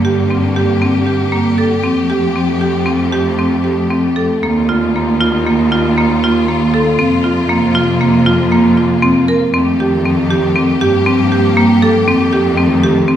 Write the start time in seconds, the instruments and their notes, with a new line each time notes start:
Already playing: cello G2, string section D3 A#3 G4
0.05 marimba G4
0.30 marimba C4
0.56 marimba G4
0.82 marimba C4
1.07 marimba G4
1.32 marimba A#3
1.58 marimba A4
1.84 cello F2, string section F3 A3, marimba C4
2.10 marimba G4
2.36 marimba C4
2.61 marimba G4
2.86 marimba C4
3.12 marimba G4
3.39 marimba C4
3.64 marimba G4
3.90 marimba C4
4.16 marimba A4
4.42 cello D#2, string section D#3 G3 F4, marimba A#3
4.69 marimba F4
4.96 marimba A#3
5.21 marimba F4
5.46 marimba A#3
5.72 marimba F4
5.98 marimba A#3
6.24 marimba F4
6.49 marimba A#3
6.74 marimba A4
6.99 cello F2, string section C3 A#3, marimba C4
7.24 marimba F4
7.49 marimba A#3
7.75 marimba F4
8.01 marimba A#3
8.26 marimba F4
8.52 marimba A#3
8.77 marimba F4
9.02 marimba C4
9.28 marimba A#4
9.54 cello F2, string section D#3 A3 G4, marimba C4
9.80 marimba G4
10.05 marimba C4
10.31 marimba G4
10.56 marimba C4
10.80 cello G2, string section F3 A#3, marimba G4
11.06 marimba C4
11.32 marimba G4
11.57 marimba A#3
11.82 marimba A4
12.06 cello F2, string section D#3 A3, marimba C4
12.33 marimba G4
12.57 marimba C4
12.83 marimba G4
13.08 marimba C4